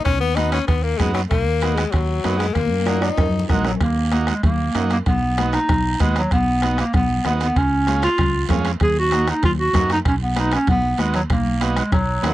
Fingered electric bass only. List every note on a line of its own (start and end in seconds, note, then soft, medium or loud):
0.06 0.21 B1 medium
0.21 0.59 D#2 medium
0.68 0.93 D#2 medium
1.00 1.25 F#2 medium
1.31 1.47 B1 medium
1.47 1.84 D#2 medium
1.94 2.19 D#2 medium
2.25 2.50 F#2 medium
2.56 2.72 D#2 medium
2.72 3.09 F#2 medium
3.18 3.43 F#2 medium
3.50 3.75 A#1 medium
3.81 4.31 D#2 loud
4.43 4.68 D#2 loud
4.75 5.00 F#2 medium
5.07 5.56 B1 medium
5.69 5.94 B1 medium
6.00 6.25 D#2 medium
6.32 6.81 B1 medium
6.94 7.19 B1 loud
7.25 7.50 D#2 medium
7.56 8.06 C#2 medium
8.19 8.44 C#2 medium
8.50 8.75 F2 medium
8.81 9.31 D#2 loud
9.43 9.68 D#2 loud
9.75 10.00 F#2 medium
10.05 10.56 B1 loud
10.68 10.93 B1 loud
10.99 11.24 D#2 medium
11.30 11.80 B1 loud
11.93 12.18 B1 loud
12.24 12.34 D#2 medium